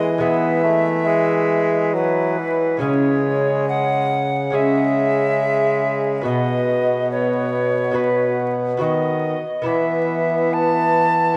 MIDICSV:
0, 0, Header, 1, 5, 480
1, 0, Start_track
1, 0, Key_signature, 4, "major"
1, 0, Tempo, 864553
1, 1562, Time_signature, 4, 2, 24, 8
1, 2522, Tempo, 854701
1, 6356, End_track
2, 0, Start_track
2, 0, Title_t, "Recorder"
2, 0, Program_c, 0, 74
2, 0, Note_on_c, 0, 75, 88
2, 121, Note_on_c, 0, 76, 78
2, 130, Note_off_c, 0, 75, 0
2, 1077, Note_off_c, 0, 76, 0
2, 1080, Note_on_c, 0, 71, 77
2, 1539, Note_off_c, 0, 71, 0
2, 1556, Note_on_c, 0, 73, 67
2, 2032, Note_off_c, 0, 73, 0
2, 2046, Note_on_c, 0, 78, 89
2, 2526, Note_on_c, 0, 76, 80
2, 2534, Note_off_c, 0, 78, 0
2, 3350, Note_off_c, 0, 76, 0
2, 3482, Note_on_c, 0, 75, 69
2, 3951, Note_off_c, 0, 75, 0
2, 3965, Note_on_c, 0, 73, 74
2, 4438, Note_on_c, 0, 71, 76
2, 4447, Note_off_c, 0, 73, 0
2, 4763, Note_off_c, 0, 71, 0
2, 4919, Note_on_c, 0, 75, 71
2, 5378, Note_off_c, 0, 75, 0
2, 5400, Note_on_c, 0, 76, 68
2, 5886, Note_on_c, 0, 81, 87
2, 5894, Note_off_c, 0, 76, 0
2, 6356, Note_off_c, 0, 81, 0
2, 6356, End_track
3, 0, Start_track
3, 0, Title_t, "Lute"
3, 0, Program_c, 1, 24
3, 0, Note_on_c, 1, 52, 46
3, 0, Note_on_c, 1, 56, 42
3, 0, Note_on_c, 1, 59, 43
3, 0, Note_on_c, 1, 68, 44
3, 94, Note_off_c, 1, 56, 0
3, 100, Note_off_c, 1, 59, 0
3, 101, Note_on_c, 1, 56, 42
3, 105, Note_off_c, 1, 68, 0
3, 109, Note_on_c, 1, 59, 41
3, 114, Note_on_c, 1, 68, 45
3, 1362, Note_off_c, 1, 52, 0
3, 1529, Note_off_c, 1, 56, 0
3, 1534, Note_off_c, 1, 59, 0
3, 1536, Note_off_c, 1, 68, 0
3, 1538, Note_on_c, 1, 56, 35
3, 1547, Note_on_c, 1, 61, 40
3, 1553, Note_on_c, 1, 68, 39
3, 1561, Note_on_c, 1, 49, 44
3, 2489, Note_off_c, 1, 56, 0
3, 2493, Note_off_c, 1, 61, 0
3, 2496, Note_off_c, 1, 68, 0
3, 2500, Note_on_c, 1, 56, 35
3, 2509, Note_on_c, 1, 61, 40
3, 2516, Note_on_c, 1, 68, 39
3, 3449, Note_off_c, 1, 56, 0
3, 3453, Note_off_c, 1, 61, 0
3, 3457, Note_off_c, 1, 68, 0
3, 3460, Note_off_c, 1, 49, 0
3, 3461, Note_on_c, 1, 59, 40
3, 3469, Note_on_c, 1, 66, 37
3, 3475, Note_on_c, 1, 71, 37
3, 3484, Note_on_c, 1, 47, 44
3, 4407, Note_off_c, 1, 59, 0
3, 4411, Note_off_c, 1, 66, 0
3, 4414, Note_off_c, 1, 71, 0
3, 4415, Note_on_c, 1, 59, 39
3, 4424, Note_on_c, 1, 66, 40
3, 4432, Note_on_c, 1, 71, 38
3, 4890, Note_off_c, 1, 59, 0
3, 4897, Note_off_c, 1, 66, 0
3, 4897, Note_on_c, 1, 59, 42
3, 4898, Note_off_c, 1, 47, 0
3, 4902, Note_off_c, 1, 71, 0
3, 4905, Note_on_c, 1, 66, 44
3, 4911, Note_on_c, 1, 71, 42
3, 4918, Note_on_c, 1, 51, 48
3, 5220, Note_off_c, 1, 51, 0
3, 5366, Note_off_c, 1, 59, 0
3, 5373, Note_on_c, 1, 59, 38
3, 5378, Note_off_c, 1, 66, 0
3, 5381, Note_off_c, 1, 71, 0
3, 5381, Note_on_c, 1, 64, 36
3, 5387, Note_on_c, 1, 71, 36
3, 5394, Note_on_c, 1, 52, 42
3, 6327, Note_off_c, 1, 59, 0
3, 6331, Note_off_c, 1, 64, 0
3, 6334, Note_off_c, 1, 71, 0
3, 6339, Note_on_c, 1, 59, 41
3, 6356, Note_off_c, 1, 52, 0
3, 6356, Note_off_c, 1, 59, 0
3, 6356, End_track
4, 0, Start_track
4, 0, Title_t, "Bassoon"
4, 0, Program_c, 2, 70
4, 0, Note_on_c, 2, 56, 63
4, 70, Note_off_c, 2, 56, 0
4, 115, Note_on_c, 2, 59, 72
4, 343, Note_off_c, 2, 59, 0
4, 352, Note_on_c, 2, 57, 75
4, 591, Note_on_c, 2, 56, 78
4, 599, Note_off_c, 2, 57, 0
4, 1078, Note_on_c, 2, 54, 72
4, 1087, Note_off_c, 2, 56, 0
4, 1320, Note_on_c, 2, 52, 63
4, 1329, Note_off_c, 2, 54, 0
4, 1557, Note_off_c, 2, 52, 0
4, 1561, Note_on_c, 2, 56, 53
4, 2427, Note_off_c, 2, 56, 0
4, 2521, Note_on_c, 2, 56, 56
4, 3463, Note_off_c, 2, 56, 0
4, 3479, Note_on_c, 2, 59, 59
4, 4419, Note_off_c, 2, 59, 0
4, 4437, Note_on_c, 2, 59, 46
4, 4909, Note_off_c, 2, 59, 0
4, 4922, Note_on_c, 2, 59, 52
4, 5238, Note_off_c, 2, 59, 0
4, 5404, Note_on_c, 2, 59, 57
4, 6343, Note_off_c, 2, 59, 0
4, 6356, End_track
5, 0, Start_track
5, 0, Title_t, "Bassoon"
5, 0, Program_c, 3, 70
5, 0, Note_on_c, 3, 52, 70
5, 1360, Note_off_c, 3, 52, 0
5, 1564, Note_on_c, 3, 49, 55
5, 3461, Note_off_c, 3, 49, 0
5, 3477, Note_on_c, 3, 47, 58
5, 4919, Note_on_c, 3, 51, 52
5, 4927, Note_off_c, 3, 47, 0
5, 5243, Note_off_c, 3, 51, 0
5, 5397, Note_on_c, 3, 52, 63
5, 6356, Note_off_c, 3, 52, 0
5, 6356, End_track
0, 0, End_of_file